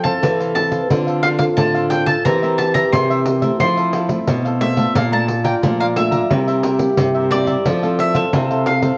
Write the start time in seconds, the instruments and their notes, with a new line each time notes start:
Already playing: nylon-string guitar F3, trombone A4
0.04 nylon-string guitar C4 E4 A4, cavaquinho A4 C5 F5, mandolin A5, pandeiro
0.22 nylon-string guitar C3 E3, cavaquinho E4 A4 C5 F5, pandeiro
0.40 cavaquinho A4 C5 F5, pandeiro
0.55 nylon-string guitar C4 E4 A4, mandolin A5, pandeiro
0.71 cavaquinho A4 C5 F5, pandeiro
0.90 nylon-string guitar D3 C4 F4 A4, cavaquinho D4 A4 C5 F5, trombone F4, pandeiro
1.07 cavaquinho A4 C5 F5, pandeiro
1.23 cavaquinho D4 A4 C5 F5, mandolin F5, pandeiro
1.39 nylon-string guitar C4 F4 A4, mandolin F5, muted cavaquinho stroke, pandeiro
1.57 nylon-string guitar A2 D3, mandolin A5, pandeiro
1.75 cavaquinho A4 C5 F5, pandeiro
1.90 nylon-string guitar C4 F4 A4, cavaquinho D4 A4 C5 F5, mandolin G5, pandeiro
2.06 cavaquinho A4 C5 F5, mandolin A5, pandeiro
2.25 nylon-string guitar E3 C4 G4 A#4, cavaquinho E4 A#4 C5 E5, trombone G4, mandolin A#5, pandeiro
2.42 nylon-string guitar C4 G4 A#4, cavaquinho A#4 C5 E5, pandeiro
2.58 mandolin A5, muted cavaquinho stroke, pandeiro
2.74 cavaquinho A#4 C5 E5, mandolin A#5, pandeiro
2.92 nylon-string guitar C3 E3 C4 G4 A#4, cavaquinho E4 A#4 C5 E5, mandolin C6, pandeiro
3.10 cavaquinho A#4 C5 E5, pandeiro
3.25 pandeiro
3.42 nylon-string guitar A3 C4 E4, cavaquinho A#4 C5 E5, pandeiro
3.60 nylon-string guitar F3, cavaquinho E4 A4 C5 F5, trombone E4, mandolin C6, pandeiro
3.77 cavaquinho A4 C5 F5, pandeiro
3.93 cavaquinho E4 A4 C5 F5, pandeiro
4.09 nylon-string guitar A3 C4 E4, muted cavaquinho stroke, pandeiro
4.27 nylon-string guitar B2, pandeiro
4.45 cavaquinho A4 C5 F5, pandeiro
4.60 nylon-string guitar A3 C4 E4, cavaquinho E4 A4 C5 F5, mandolin E5, pandeiro
4.76 nylon-string guitar A3 D4 F4, cavaquinho A4 C5 F5, pandeiro
4.95 nylon-string guitar A#2, trombone F4, cavaquinho A4 D5 F5 A#5, mandolin F5, pandeiro
5.12 nylon-string guitar A3 D4 F4, cavaquinho D5 F5 A#5, mandolin A5, pandeiro
5.28 muted cavaquinho stroke, pandeiro
5.44 cavaquinho D5 F5 A#5, mandolin G5, pandeiro
5.62 nylon-string guitar A#2 F3 A3 D4 F4, cavaquinho A4 D5 F5 A#5, pandeiro
5.80 cavaquinho D5 F5 A#5, mandolin F5, pandeiro
5.96 nylon-string guitar A3 D4 F4, mandolin E5, pandeiro
6.11 cavaquinho D5 F5 A#5, pandeiro
6.30 nylon-string guitar C3 G3 A#3 E4, cavaquinho E4 A#4 C5 E5, trombone G4, pandeiro
6.47 cavaquinho A#4 C5 E5, pandeiro
6.63 cavaquinho E4 A#4 C5 E5, pandeiro
6.79 nylon-string guitar G3 A#3 E4, muted cavaquinho stroke, pandeiro
6.98 nylon-string guitar G2 C3, pandeiro
7.15 cavaquinho A#4 C5 E5, pandeiro
7.31 nylon-string guitar G3 A#3 E4, cavaquinho E4 A#4 C5 E5, mandolin D5, pandeiro
7.47 cavaquinho A#4 C5 E5, pandeiro
7.65 nylon-string guitar F3 C4 E4 A4, cavaquinho E4 A4 C5 F5, trombone A4, pandeiro
7.83 nylon-string guitar C4 E4 A4, cavaquinho A4 C5 F5, pandeiro
7.99 mandolin E5, pandeiro
8.14 nylon-string guitar C4 E4 A4, cavaquinho A4 C5 F5, mandolin E5, pandeiro
8.33 nylon-string guitar C3 C4 E4 A4, cavaquinho E4 A4 C5 F5, pandeiro
8.51 cavaquinho A4 C5 F5, pandeiro
8.66 mandolin F5, pandeiro
8.82 nylon-string guitar C4 E4 A4, cavaquinho A4 C5 F5, pandeiro